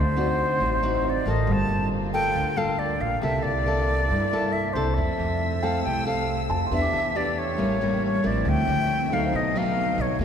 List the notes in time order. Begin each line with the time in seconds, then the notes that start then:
Already playing: D2 D3 C4 F#4
0.00 C5
0.16 C4 D#4 F#4 D5
0.60 A1 A2
0.83 C4 D#4 F#4
1.05 C5
1.10 D5
1.26 A1 A#3 F4 A4
1.30 D#5
1.47 G1 G3 A#3 F4
1.52 A5
1.69 G1
2.14 A#3 F4 A4 G5
2.35 D2 D3
2.56 A#3 F4 A4 F5
2.79 D5
3.00 A#1 F5
3.22 C2 C3 A#3 E4 A4 D5 E5
3.43 C2 D5
3.66 A#3 E4 A4
4.10 G2
4.32 A#3 E4 A4
4.52 E5
4.73 C2 C4 E4 A4 C5
4.94 F2 F3 E5
4.99 A3 E6
5.20 F2
5.62 C4 E4 A4 F5 G5
5.84 C2 C3 G5
6.05 C4 A4 F5
6.50 F2 A5
6.66 C6
6.71 E2 E3 B3 D4 G4 E5
6.82 D6
6.93 E2
7.15 B3 D4 G4 D5
7.38 C#5
7.58 A1 A2 G3 A#3 C#4 C#5
7.81 G3 A#3 C#4
8.06 C#5
8.24 A1 F3 C4 E4 A#4 D5
8.45 D2 D3 C4 E5 G5
8.67 D2
9.11 F#3 A3 D#4 A4 F5
9.26 C5
9.32 B1 B2 B3 A4 D#5
9.56 F#3 A3 D#4 F5
9.98 B1 C#5
10.19 E2 E3 A#3 D4 G4 E5